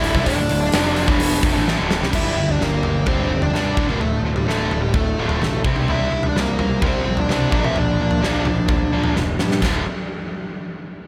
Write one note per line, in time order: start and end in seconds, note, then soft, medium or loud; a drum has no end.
0.00 0.12 D1 medium
0.00 0.14 D2 medium
0.00 0.14 A2 loud
0.00 0.14 D3 loud
0.00 2.09 D3 medium
0.00 2.08 D4 medium
0.00 0.25 E4 medium
0.00 0.28 E5 loud
0.00 2.09 A5 medium
0.00 open hi-hat medium
0.05 snare soft
0.14 0.25 C2 loud
0.14 0.26 C3 loud
0.14 0.26 G3 loud
0.14 kick loud
0.26 0.37 D1 loud
0.26 0.37 D2 medium
0.26 0.37 A2 loud
0.26 1.64 D4 medium
0.26 1.18 D5 medium
0.26 kick loud
0.26 open hi-hat medium
0.38 0.49 D1 medium
0.38 0.49 D2 medium
0.38 0.50 A2 medium
0.49 0.72 D1 medium
0.49 0.68 D2 medium
0.49 0.69 A2 medium
0.49 open hi-hat medium
0.72 1.06 F1 loud
0.72 1.07 F2 loud
0.72 1.07 C3 loud
0.72 1.08 F3 loud
0.72 snare loud
0.72 open hi-hat loud
0.96 open hi-hat medium
1.08 1.41 E1 loud
1.08 1.42 E2 loud
1.08 1.43 B2 loud
1.08 1.43 E3 loud
1.08 kick loud
1.18 1.62 C5 medium
1.18 open hi-hat loud
1.43 1.54 F1 loud
1.43 1.54 F2 medium
1.43 1.54 C3 medium
1.43 kick loud
1.43 open hi-hat medium
1.56 1.78 A1 loud
1.56 1.78 A2 medium
1.56 1.78 E3 medium
1.56 1.78 A3 loud
1.68 snare medium
1.79 2.01 D1 loud
1.79 2.01 D2 medium
1.79 2.01 A2 medium
1.79 2.02 D3 medium
1.91 snare loud
2.02 2.13 C2 medium
2.02 2.13 C3 medium
2.02 2.13 G3 loud
2.02 snare medium
2.13 2.32 G1 medium
2.13 3.30 G2 medium
2.13 2.36 G2 medium
2.13 2.36 D3 medium
2.13 2.36 G3 medium
2.13 2.47 E4 medium
2.13 2.47 E5 loud
2.13 kick loud
2.13 floor tom medium
2.13 crash loud
2.36 2.55 G1 medium
2.36 2.58 G2 medium
2.36 2.59 D3 medium
2.36 3.30 G4 medium
2.49 2.61 D4 medium
2.49 2.62 D5 medium
2.49 floor tom medium
2.60 2.80 G1 medium
2.60 2.81 G2 medium
2.60 2.82 D3 medium
2.60 3.06 A#3 medium
2.60 3.07 D4 medium
2.60 3.06 A#4 medium
2.60 snare medium
2.83 3.03 G1 medium
2.83 3.05 G2 medium
2.83 3.05 D3 medium
2.83 3.77 G3 medium
2.83 floor tom medium
2.83 mid tom medium
3.06 3.26 G1 medium
3.06 3.29 G2 medium
3.06 3.30 D3 medium
3.06 3.30 G3 medium
3.06 3.40 C4 medium
3.06 3.54 D4 medium
3.06 3.42 C5 medium
3.06 kick loud
3.06 floor tom medium
3.29 3.49 F1 medium
3.29 3.52 G2 medium
3.29 3.52 D3 medium
3.29 3.78 G4 medium
3.42 3.86 D4 medium
3.42 3.86 D5 medium
3.42 floor tom medium
3.53 3.73 G2 medium
3.53 3.76 G2 medium
3.53 3.77 D3 medium
3.53 3.77 G3 medium
3.53 5.69 D4 medium
3.53 snare medium
3.53 mid tom medium
3.77 3.96 D1 medium
3.77 4.00 D2 medium
3.77 4.00 A2 medium
3.77 4.00 D3 loud
3.77 kick loud
3.89 3.99 A#3 medium
3.89 4.00 A#4 medium
3.89 mid tom medium
4.00 4.19 D1 medium
4.00 5.18 D2 medium
4.00 4.23 D2 medium
4.00 4.23 A2 medium
4.00 4.33 A3 medium
4.00 4.35 A4 medium
4.00 floor tom medium
4.23 4.42 D2 medium
4.23 4.46 D2 medium
4.23 4.46 A2 medium
4.23 5.19 F4 medium
4.36 4.47 G3 medium
4.36 4.47 G4 medium
4.36 floor tom medium
4.46 4.66 D1 medium
4.46 4.70 D2 medium
4.46 4.70 A2 medium
4.46 4.71 D3 loud
4.46 4.79 A3 medium
4.46 4.95 A3 medium
4.46 4.82 A4 medium
4.46 snare medium
4.71 4.90 D1 medium
4.71 4.92 D2 medium
4.71 5.65 A2 medium
4.71 4.93 A2 medium
4.71 floor tom medium
4.81 4.93 G3 medium
4.81 4.95 G4 medium
4.93 5.13 D1 medium
4.93 5.16 D2 medium
4.93 5.16 A2 medium
4.93 5.60 A3 medium
4.93 5.42 A3 medium
4.93 5.61 A4 medium
4.93 kick loud
4.93 floor tom medium
5.18 5.37 D1 medium
5.18 5.40 D2 medium
5.18 5.41 A2 medium
5.18 5.41 D3 medium
5.18 5.66 F4 medium
5.29 floor tom medium
5.41 5.61 A1 medium
5.41 5.63 D2 medium
5.41 5.63 A2 medium
5.41 5.66 A3 medium
5.41 snare medium
5.41 mid tom medium
5.64 5.84 C2 medium
5.64 5.86 C3 medium
5.64 5.89 C3 medium
5.64 5.87 G3 loud
5.64 5.87 C4 loud
5.64 kick loud
5.76 mid tom medium
5.87 6.08 C2 loud
5.87 6.10 C3 medium
5.87 6.10 G3 medium
5.87 6.10 C4 medium
5.87 6.22 E4 medium
5.87 floor tom medium
5.92 6.26 E5 loud
6.12 6.31 C2 medium
6.12 6.33 C3 medium
6.12 6.33 G3 medium
6.23 6.36 D4 medium
6.23 floor tom medium
6.29 6.37 D5 medium
6.35 6.54 C2 medium
6.35 6.57 C3 medium
6.35 6.57 G3 medium
6.35 6.81 A#3 medium
6.35 snare medium
6.41 6.86 A#4 medium
6.59 6.78 C2 medium
6.59 6.80 C3 medium
6.59 6.80 G3 medium
6.59 floor tom medium
6.59 mid tom medium
6.82 7.01 C2 medium
6.82 7.04 C3 medium
6.82 7.04 G3 medium
6.82 7.05 C4 loud
6.82 kick loud
6.82 floor tom medium
6.86 7.17 C4 medium
6.86 7.20 C5 medium
7.06 7.26 A#1 medium
7.06 7.27 C3 medium
7.06 7.27 G3 medium
7.17 7.62 D4 medium
7.17 7.67 D5 medium
7.17 floor tom medium
7.29 7.52 C2 medium
7.29 7.51 C3 medium
7.29 7.51 G3 medium
7.29 7.52 C4 loud
7.29 snare medium
7.29 mid tom medium
7.52 7.71 A#1 medium
7.52 7.75 A#2 medium
7.52 7.75 F3 loud
7.52 7.75 A#3 medium
7.52 kick loud
7.64 7.76 E4 medium
7.64 7.77 E5 medium
7.64 mid tom medium
7.76 7.95 A#1 loud
7.76 7.97 A#2 medium
7.76 7.97 F3 medium
7.76 9.13 D4 medium
7.76 9.14 D5 medium
7.76 floor tom medium
8.00 8.21 A#2 medium
8.00 8.19 A#2 medium
8.00 8.21 F3 medium
8.11 floor tom medium
8.22 8.41 A#1 medium
8.22 8.44 A#2 loud
8.22 8.45 F3 loud
8.22 8.45 A#3 loud
8.22 snare medium
8.45 8.65 A#1 medium
8.45 8.67 A#2 medium
8.45 8.67 F3 medium
8.45 floor tom medium
8.45 mid tom medium
8.68 8.88 A#1 medium
8.68 8.90 A#2 medium
8.68 8.90 F3 medium
8.68 kick loud
8.68 floor tom medium
8.92 9.12 A#1 medium
8.92 9.14 A#2 medium
8.92 9.15 F3 loud
8.92 9.15 A#3 medium
9.03 floor tom medium
9.15 9.36 F1 loud
9.15 9.37 A#2 medium
9.15 9.37 F3 medium
9.15 snare medium
9.39 9.59 G2 medium
9.39 9.61 A#2 medium
9.39 9.61 F3 medium
9.39 snare medium
9.51 snare medium
9.62 9.85 D1 medium
9.62 9.81 D2 medium
9.62 9.82 A2 medium
9.62 9.82 D3 loud
9.62 9.82 A3 medium
9.62 9.82 F4 loud
9.62 kick loud
9.62 snare loud
9.62 crash medium